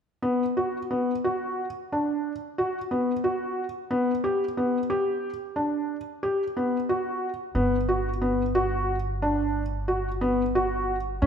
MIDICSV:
0, 0, Header, 1, 3, 480
1, 0, Start_track
1, 0, Key_signature, 2, "minor"
1, 0, Tempo, 666667
1, 163, Time_signature, 11, 3, 24, 8
1, 8112, End_track
2, 0, Start_track
2, 0, Title_t, "Felt piano"
2, 0, Program_c, 0, 0
2, 162, Note_on_c, 0, 59, 54
2, 306, Note_off_c, 0, 59, 0
2, 409, Note_on_c, 0, 66, 43
2, 552, Note_off_c, 0, 66, 0
2, 652, Note_on_c, 0, 59, 43
2, 795, Note_off_c, 0, 59, 0
2, 896, Note_on_c, 0, 66, 50
2, 1181, Note_off_c, 0, 66, 0
2, 1386, Note_on_c, 0, 62, 47
2, 1667, Note_off_c, 0, 62, 0
2, 1860, Note_on_c, 0, 66, 47
2, 2000, Note_off_c, 0, 66, 0
2, 2096, Note_on_c, 0, 59, 49
2, 2237, Note_off_c, 0, 59, 0
2, 2333, Note_on_c, 0, 66, 49
2, 2616, Note_off_c, 0, 66, 0
2, 2812, Note_on_c, 0, 59, 60
2, 2954, Note_off_c, 0, 59, 0
2, 3052, Note_on_c, 0, 67, 50
2, 3194, Note_off_c, 0, 67, 0
2, 3293, Note_on_c, 0, 59, 47
2, 3434, Note_off_c, 0, 59, 0
2, 3527, Note_on_c, 0, 67, 54
2, 3811, Note_off_c, 0, 67, 0
2, 4003, Note_on_c, 0, 62, 43
2, 4288, Note_off_c, 0, 62, 0
2, 4485, Note_on_c, 0, 67, 50
2, 4627, Note_off_c, 0, 67, 0
2, 4728, Note_on_c, 0, 59, 48
2, 4869, Note_off_c, 0, 59, 0
2, 4963, Note_on_c, 0, 66, 55
2, 5246, Note_off_c, 0, 66, 0
2, 5435, Note_on_c, 0, 59, 59
2, 5578, Note_off_c, 0, 59, 0
2, 5678, Note_on_c, 0, 66, 52
2, 5820, Note_off_c, 0, 66, 0
2, 5915, Note_on_c, 0, 59, 51
2, 6058, Note_off_c, 0, 59, 0
2, 6156, Note_on_c, 0, 66, 60
2, 6441, Note_off_c, 0, 66, 0
2, 6641, Note_on_c, 0, 62, 48
2, 6925, Note_off_c, 0, 62, 0
2, 7113, Note_on_c, 0, 66, 52
2, 7257, Note_off_c, 0, 66, 0
2, 7353, Note_on_c, 0, 59, 54
2, 7497, Note_off_c, 0, 59, 0
2, 7598, Note_on_c, 0, 66, 60
2, 7883, Note_off_c, 0, 66, 0
2, 8078, Note_on_c, 0, 61, 66
2, 8112, Note_off_c, 0, 61, 0
2, 8112, End_track
3, 0, Start_track
3, 0, Title_t, "Upright bass"
3, 0, Program_c, 1, 32
3, 5435, Note_on_c, 1, 31, 51
3, 8047, Note_off_c, 1, 31, 0
3, 8078, Note_on_c, 1, 33, 59
3, 8112, Note_off_c, 1, 33, 0
3, 8112, End_track
0, 0, End_of_file